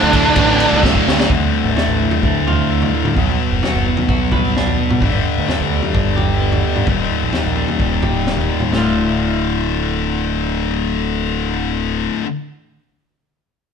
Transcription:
0.00 0.35 D2 medium
0.00 0.31 D2 loud
0.00 0.35 A2 loud
0.00 0.37 D3 loud
0.00 0.80 D4 medium
0.00 0.80 D5 loud
0.13 1.29 D2 medium
0.13 1.29 A2 medium
0.13 1.27 D3 medium
0.13 kick medium
0.13 ride medium
0.36 0.65 A1 loud
0.36 1.27 D2 medium
0.36 1.28 A2 medium
0.36 1.29 D3 loud
0.36 kick loud
0.36 ride loud
0.60 ride medium
0.72 1.01 C2 medium
0.83 kick loud
0.83 snare medium
0.95 kick medium
1.08 1.26 D2 medium
1.08 snare medium
1.20 snare loud
1.29 3.13 D2 medium
1.29 1.49 D2 medium
1.29 2.46 D2 medium
1.29 3.14 A2 medium
1.29 3.15 D3 medium
1.29 kick loud
1.29 floor tom medium
1.64 1.74 A1 medium
1.76 2.22 A3 medium
1.76 snare medium
1.76 floor tom medium
1.88 2.07 A1 medium
1.99 2.92 A2 medium
2.11 floor tom medium
2.23 2.90 D2 loud
2.23 3.15 A3 medium
2.23 kick medium
2.47 3.16 F4 medium
2.47 floor tom medium
2.70 3.16 D3 medium
2.82 floor tom medium
2.93 3.16 A2 medium
3.04 3.13 D3 medium
3.04 mid tom medium
3.15 3.35 B1 medium
3.15 5.00 B2 medium
3.15 4.32 B2 medium
3.15 5.01 F#3 medium
3.15 5.01 B3 medium
3.15 kick medium
3.15 floor tom medium
3.51 3.60 F#1 medium
3.63 4.07 F#4 medium
3.63 snare medium
3.63 floor tom medium
3.74 3.93 F#1 medium
3.87 4.77 B3 medium
3.97 floor tom medium
4.08 4.76 B1 medium
4.08 5.01 F#4 medium
4.08 kick loud
4.32 5.02 B4 medium
4.32 kick medium
4.32 floor tom medium
4.32 mid tom medium
4.56 5.02 D4 medium
4.56 snare medium
4.67 floor tom medium
4.79 5.01 B3 medium
4.90 5.00 B2 medium
4.90 mid tom medium
5.01 5.21 G1 medium
5.01 6.86 G2 medium
5.01 6.18 G2 medium
5.01 6.87 D3 medium
5.01 6.88 G3 medium
5.01 kick medium
5.01 floor tom medium
5.38 5.47 D2 medium
5.48 5.92 D4 medium
5.48 snare medium
5.48 floor tom medium
5.61 5.80 D2 medium
5.70 6.62 G3 medium
5.83 floor tom medium
5.93 6.62 G1 medium
5.93 6.87 D4 medium
5.93 kick medium
6.16 6.87 G4 medium
6.16 floor tom medium
6.40 6.87 B3 medium
6.52 floor tom medium
6.63 6.87 G3 medium
6.76 6.85 G2 medium
6.76 mid tom medium
6.87 7.07 D#1 medium
6.87 8.03 D#2 medium
6.87 8.72 D#2 medium
6.87 8.73 A#2 medium
6.87 kick medium
6.87 floor tom medium
6.91 8.74 D#3 medium
7.23 7.32 A#1 medium
7.32 7.79 G3 medium
7.32 snare medium
7.32 floor tom medium
7.46 7.65 A#1 medium
7.56 8.48 A#2 medium
7.68 floor tom medium
7.80 8.47 D#1 medium
7.80 8.74 G3 medium
7.80 kick medium
8.02 8.73 G4 medium
8.02 kick medium
8.02 floor tom medium
8.02 mid tom medium
8.27 8.74 D#3 medium
8.27 snare medium
8.37 floor tom medium
8.49 8.72 A#2 soft
8.60 8.71 D#2 medium
8.60 mid tom medium
8.72 12.08 D1 medium
8.72 12.22 D2 medium
8.72 12.23 A2 medium
8.72 12.24 A2 medium
8.72 12.24 D3 medium
8.72 12.26 D3 medium
8.72 12.25 A3 medium
8.72 12.26 F4 medium
8.72 snare medium

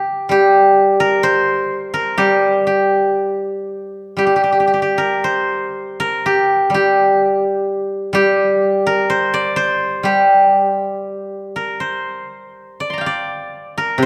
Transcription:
0.00 0.31 G4 soft
0.00 0.28 A#4 medium
0.29 2.17 G3 soft
0.29 2.17 G4 medium
1.00 1.93 A#4 medium
1.23 3.21 C5 medium
1.94 4.06 A#4 medium
2.18 4.15 G3 soft
2.18 2.66 G4 medium
2.67 4.18 G4 medium
4.17 6.69 G3 soft
4.17 4.26 G4 medium
4.27 4.35 G4 soft
4.36 4.43 G4 soft
4.44 4.52 G4 soft
4.52 4.59 G4 soft
4.60 4.67 G4 soft
4.67 4.73 G4 soft
4.74 4.82 G4 soft
4.82 6.25 G4 soft
4.98 5.99 A#4 medium
5.24 7.22 C5 medium
6.00 8.12 A#4 medium
6.26 6.74 G4 medium
6.70 8.12 G3 soft
6.74 8.14 G4 medium
8.13 10.02 G3 medium
8.13 10.05 G4 medium
8.87 10.99 A#4 medium
9.10 9.56 C5 medium
9.34 11.18 D5 medium
9.56 11.54 C5 medium
10.03 13.02 G3 soft
10.03 12.40 G4 medium
11.56 13.68 A#4 soft
11.80 13.78 C5 soft
12.80 13.06 D5 medium
12.90 14.06 A#5 soft
12.90 14.06 C6 soft
12.98 14.06 F5 soft
12.98 14.06 G5 soft
13.06 14.06 D5 medium
13.78 14.06 A#4 medium
13.98 14.06 C3 medium
14.02 14.06 C5 medium

